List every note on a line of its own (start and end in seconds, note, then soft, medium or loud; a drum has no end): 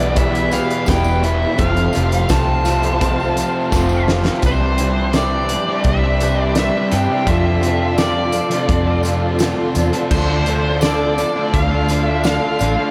0.00 0.58 B1 medium
0.00 0.14 E2 medium
0.00 0.86 E2 medium
0.00 0.16 B2 medium
0.00 0.16 E3 medium
0.00 0.17 E3 medium
0.00 0.17 G3 medium
0.00 0.18 B3 medium
0.00 0.18 E4 medium
0.00 1.57 G4 medium
0.00 1.56 B4 medium
0.00 0.20 D5 medium
0.00 1.56 B5 medium
0.15 0.85 E2 medium
0.15 0.88 E2 medium
0.15 0.88 B2 medium
0.15 0.53 B2 loud
0.15 0.54 E3 loud
0.15 0.49 E3 loud
0.15 0.53 G3 loud
0.15 0.52 B3 loud
0.15 0.50 E4 loud
0.15 0.53 E5 medium
0.15 kick loud
0.15 closed hi-hat loud
0.35 closed hi-hat medium
0.51 0.87 B2 medium
0.51 0.88 E3 medium
0.51 0.86 G3 medium
0.51 0.88 B3 medium
0.51 0.89 E4 medium
0.51 0.89 F5 medium
0.51 closed hi-hat medium
0.51 tambourine medium
0.55 0.85 E3 medium
0.70 closed hi-hat soft
0.86 1.44 E1 medium
0.86 1.56 E2 medium
0.86 1.24 B2 medium
0.86 1.24 E3 medium
0.86 1.22 E3 medium
0.86 1.23 G3 medium
0.86 1.22 B3 medium
0.86 1.24 G5 medium
0.86 kick loud
0.86 snare loud
0.86 closed hi-hat loud
0.86 tambourine loud
0.90 1.20 E4 medium
1.04 tambourine medium
1.22 1.58 B2 medium
1.22 1.57 E3 medium
1.22 1.58 E3 medium
1.22 1.58 G3 medium
1.22 1.57 B3 medium
1.22 1.56 E4 medium
1.22 1.59 E5 medium
1.22 closed hi-hat medium
1.22 tambourine soft
1.57 1.87 F1 loud
1.57 2.29 F2 medium
1.57 2.28 F2 medium
1.57 2.30 C3 medium
1.57 1.95 C3 loud
1.57 1.96 F3 loud
1.57 1.94 A3 loud
1.57 1.93 C4 medium
1.57 1.92 F4 medium
1.57 4.40 A4 medium
1.57 4.40 C5 medium
1.57 4.40 F5 medium
1.57 2.32 F5 loud
1.57 4.40 C6 medium
1.57 kick loud
1.57 closed hi-hat loud
1.57 tambourine soft
1.61 1.92 F3 loud
1.76 closed hi-hat soft
1.76 tambourine soft
1.93 2.29 C3 medium
1.93 2.31 F3 medium
1.93 2.29 A3 medium
1.93 2.30 C4 medium
1.93 2.31 F4 medium
1.93 closed hi-hat medium
1.93 tambourine medium
1.97 2.24 F1 medium
1.97 2.28 F3 medium
2.11 closed hi-hat soft
2.11 tambourine soft
2.29 3.42 C2 medium
2.29 2.99 F2 medium
2.29 2.67 C3 medium
2.29 2.68 F3 medium
2.29 2.64 F3 medium
2.29 2.67 A3 medium
2.29 2.66 C4 medium
2.29 2.64 F4 medium
2.29 4.04 A5 medium
2.29 kick loud
2.29 snare loud
2.29 closed hi-hat loud
2.29 tambourine loud
2.65 3.01 C3 medium
2.65 3.02 F3 medium
2.65 3.01 A3 medium
2.65 3.03 C4 medium
2.65 3.03 F4 medium
2.65 closed hi-hat medium
2.65 tambourine medium
2.69 3.70 F2 medium
2.69 3.01 F3 medium
2.82 closed hi-hat soft
2.82 tambourine soft
3.01 3.71 F2 medium
3.01 3.72 F2 medium
3.01 3.72 C3 loud
3.01 3.38 C3 loud
3.01 3.40 F3 loud
3.01 3.35 F3 loud
3.01 3.39 A3 loud
3.01 3.38 C4 loud
3.01 3.37 F4 medium
3.01 kick loud
3.01 closed hi-hat medium
3.01 tambourine soft
3.20 tambourine soft
3.36 3.72 C3 medium
3.36 3.73 F3 medium
3.36 3.73 A3 medium
3.36 3.75 C4 medium
3.36 3.76 F4 medium
3.36 closed hi-hat medium
3.36 tambourine medium
3.41 3.72 F3 medium
3.72 4.28 F1 medium
3.72 4.41 F2 medium
3.72 4.09 C3 medium
3.72 4.12 F3 medium
3.72 4.06 F3 medium
3.72 4.10 A3 medium
3.72 kick loud
3.72 snare medium
3.72 tambourine medium
3.76 4.10 C4 medium
3.76 4.08 F4 medium
3.89 tambourine medium
4.07 4.42 C3 medium
4.07 4.41 F3 medium
4.07 4.43 C4 medium
4.07 4.42 F4 medium
4.07 snare medium
4.12 4.44 F3 medium
4.12 4.43 A3 medium
4.25 snare medium
4.25 tambourine soft
4.42 5.55 C2 medium
4.42 4.78 C3 medium
4.42 4.96 C3 medium
4.42 4.77 E3 medium
4.42 4.62 G3 medium
4.42 4.63 G3 medium
4.42 4.61 C4 loud
4.42 4.62 D4 medium
4.42 7.25 G4 medium
4.42 5.15 C5 medium
4.42 12.91 D5 medium
4.42 7.26 E5 medium
4.42 10.08 C6 medium
4.42 kick loud
4.42 closed hi-hat medium
4.42 tambourine medium
4.47 4.60 G4 loud
4.61 4.80 G3 medium
4.61 4.79 G3 medium
4.61 4.81 C4 medium
4.61 4.80 D4 medium
4.61 4.81 G4 medium
4.78 5.14 C3 medium
4.78 5.13 E3 medium
4.78 5.14 G3 medium
4.78 5.15 G3 medium
4.78 5.17 C4 medium
4.78 5.16 D4 medium
4.78 5.16 G4 medium
4.78 closed hi-hat medium
4.78 tambourine soft
5.13 5.85 C3 medium
5.13 5.50 C3 medium
5.13 5.47 E3 medium
5.13 5.48 G3 loud
5.13 5.51 G3 loud
5.13 5.51 D4 loud
5.13 5.51 G4 loud
5.13 5.88 D5 medium
5.13 snare loud
5.13 closed hi-hat medium
5.13 tambourine medium
5.18 5.52 C4 loud
5.48 6.02 E3 medium
5.48 5.69 G3 medium
5.48 5.68 D4 medium
5.48 5.65 G4 medium
5.48 muted distorted electric guitar stroke soft
5.48 closed hi-hat medium
5.48 tambourine medium
5.66 6.02 C4 medium
5.66 6.04 D4 medium
5.66 6.01 G4 medium
5.71 6.05 G3 medium
5.84 6.69 C2 medium
5.84 kick loud
5.84 closed hi-hat medium
5.88 6.41 E5 medium
6.03 6.21 G3 medium
6.03 6.20 G3 medium
6.03 6.22 C4 medium
6.03 6.22 D4 medium
6.03 6.22 G4 medium
6.20 6.54 C3 medium
6.20 6.56 E3 medium
6.20 6.41 G3 medium
6.20 6.55 G3 medium
6.20 6.57 C4 medium
6.20 6.41 D4 medium
6.20 6.37 G4 medium
6.20 closed hi-hat medium
6.20 tambourine medium
6.39 6.56 G3 medium
6.39 6.58 D4 medium
6.39 6.57 G4 medium
6.39 6.58 D5 medium
6.55 7.25 C3 medium
6.55 6.90 C3 medium
6.55 6.90 E3 medium
6.55 6.75 G3 loud
6.55 6.92 G3 medium
6.55 6.73 C4 loud
6.55 6.93 D4 medium
6.55 6.94 G4 loud
6.55 6.94 E5 medium
6.55 snare loud
6.55 closed hi-hat medium
6.55 tambourine medium
6.74 6.91 G3 medium
6.74 6.92 C4 medium
6.91 7.06 G2 medium
6.91 7.25 C3 medium
6.91 7.25 E3 medium
6.91 7.09 G3 medium
6.91 7.13 G3 medium
6.91 7.07 C4 medium
6.91 7.12 D4 medium
6.91 7.28 G5 loud
6.91 closed hi-hat medium
6.91 tambourine medium
6.95 7.09 G4 medium
7.08 7.26 G3 medium
7.08 7.24 C4 medium
7.08 7.30 D4 medium
7.08 7.26 G4 medium
7.14 7.27 G3 medium
7.25 7.59 F2 medium
7.25 8.39 F2 medium
7.25 7.44 C3 medium
7.25 7.98 F3 medium
7.25 7.41 F3 loud
7.25 10.08 F4 medium
7.25 12.91 A4 medium
7.25 7.98 E5 medium
7.25 kick loud
7.25 closed hi-hat medium
7.25 tambourine medium
7.29 7.62 D3 medium
7.29 7.49 C4 loud
7.29 7.48 F4 medium
7.29 7.46 A4 medium
7.42 7.61 C3 medium
7.42 7.63 F3 medium
7.47 7.64 C4 medium
7.47 7.66 F4 medium
7.47 7.67 A4 medium
7.61 7.95 F2 medium
7.61 7.96 C3 medium
7.61 7.98 D3 medium
7.61 7.99 F3 medium
7.61 closed hi-hat medium
7.61 tambourine soft
7.65 7.99 C4 medium
7.65 8.01 F4 medium
7.65 8.01 A4 medium
7.96 8.32 F2 medium
7.96 8.32 C3 loud
7.96 8.33 D3 medium
7.96 9.39 F3 medium
7.96 8.33 F3 loud
7.96 8.34 C4 medium
7.96 9.01 D5 medium
7.96 snare loud
7.96 closed hi-hat medium
7.96 tambourine medium
8.01 8.36 F4 loud
8.01 8.37 A4 medium
8.32 8.87 D3 medium
8.32 8.54 C4 medium
8.32 muted distorted electric guitar stroke soft
8.32 closed hi-hat medium
8.32 tambourine medium
8.37 8.53 F4 medium
8.37 8.52 A4 medium
8.50 8.87 C3 medium
8.50 8.84 F3 medium
8.50 8.87 A4 medium
8.50 closed hi-hat medium
8.54 8.89 C4 medium
8.54 8.88 F4 medium
8.69 9.53 F2 medium
8.69 kick loud
8.69 closed hi-hat medium
8.85 9.03 C3 medium
8.85 9.04 F3 medium
8.85 9.08 A4 medium
8.89 9.04 C4 medium
8.89 9.06 F4 medium
9.03 9.38 F2 medium
9.03 9.39 C3 medium
9.03 9.40 D3 medium
9.03 9.40 F3 medium
9.03 9.24 C4 medium
9.03 closed hi-hat medium
9.03 tambourine medium
9.07 9.23 F4 medium
9.07 9.21 A4 medium
9.22 9.40 C4 medium
9.22 9.41 F4 medium
9.22 9.42 A4 medium
9.39 9.74 F2 medium
9.39 9.58 C3 loud
9.39 9.72 D3 medium
9.39 10.09 F3 medium
9.39 9.56 F3 loud
9.39 9.74 C4 medium
9.39 9.75 F4 loud
9.39 snare loud
9.39 closed hi-hat medium
9.39 tambourine medium
9.43 9.77 A4 loud
9.57 9.75 C3 medium
9.57 9.77 F3 medium
9.74 9.90 E2 medium
9.74 10.09 F2 medium
9.74 9.94 C3 medium
9.74 10.08 D3 medium
9.74 9.94 C4 medium
9.74 9.93 F4 medium
9.74 9.92 A4 medium
9.74 closed hi-hat medium
9.74 tambourine medium
9.78 9.91 F3 medium
9.92 10.10 C3 medium
9.92 10.09 F3 medium
9.92 10.10 C4 medium
9.92 10.10 F4 medium
9.92 10.13 A4 medium
9.92 closed hi-hat medium
10.10 11.23 D2 medium
10.10 10.45 D3 medium
10.10 10.44 D3 medium
10.10 10.30 A3 medium
10.10 10.31 D4 medium
10.10 10.27 D4 medium
10.10 10.29 F4 loud
10.10 10.28 A4 loud
10.10 10.85 C5 medium
10.10 12.91 F5 medium
10.10 12.91 D6 medium
10.10 kick loud
10.10 tambourine medium
10.10 crash loud
10.28 10.47 A3 medium
10.28 10.47 D4 medium
10.28 10.46 D4 medium
10.28 10.47 F4 medium
10.28 10.49 A4 medium
10.45 10.81 D3 medium
10.45 10.82 A3 medium
10.45 10.82 D4 medium
10.45 10.83 D4 medium
10.45 10.83 F4 medium
10.45 10.86 A4 medium
10.45 closed hi-hat medium
10.45 tambourine soft
10.81 11.16 D3 medium
10.81 11.17 D3 medium
10.81 11.17 A3 loud
10.81 11.18 D4 medium
10.81 11.16 D4 loud
10.81 11.19 F4 medium
10.81 11.54 D5 medium
10.81 snare loud
10.81 closed hi-hat medium
10.81 tambourine loud
10.86 11.21 A4 loud
11.17 11.71 D3 medium
11.17 11.37 D4 medium
11.17 11.36 F4 medium
11.17 muted distorted electric guitar stroke soft
11.17 closed hi-hat medium
11.17 tambourine medium
11.21 11.34 A4 medium
11.35 11.74 A3 medium
11.35 11.70 D4 medium
11.35 11.73 D4 medium
11.35 11.72 F4 medium
11.35 11.71 A4 medium
11.54 12.38 D2 medium
11.54 12.05 F5 medium
11.54 kick loud
11.54 closed hi-hat medium
11.71 11.89 A3 medium
11.71 11.90 D4 medium
11.71 11.89 D4 medium
11.71 11.90 F4 medium
11.71 11.92 A4 medium
11.88 12.23 D3 medium
11.88 12.25 A3 medium
11.88 12.10 D4 medium
11.88 12.25 D4 medium
11.88 12.08 F4 medium
11.88 12.06 A4 medium
11.88 closed hi-hat medium
11.88 tambourine medium
12.05 12.25 F4 medium
12.05 12.27 A4 medium
12.05 12.26 E5 medium
12.11 12.24 D4 medium
12.24 12.58 D3 medium
12.24 12.59 D3 medium
12.24 12.44 A3 loud
12.24 12.59 D4 medium
12.24 12.40 D4 loud
12.24 12.60 F4 medium
12.24 12.62 A4 medium
12.24 12.91 F5 medium
12.24 snare loud
12.24 closed hi-hat medium
12.24 tambourine loud
12.42 12.62 A3 medium
12.42 12.61 D4 medium
12.59 12.75 A1 medium
12.59 12.91 D3 medium
12.59 12.80 A3 medium
12.59 12.79 D4 medium
12.59 12.76 D4 medium
12.59 12.78 F4 medium
12.59 12.77 A4 medium
12.59 closed hi-hat medium
12.59 tambourine medium
12.77 12.91 A3 medium
12.77 12.91 D4 medium
12.77 12.91 F4 medium
12.77 12.91 A4 medium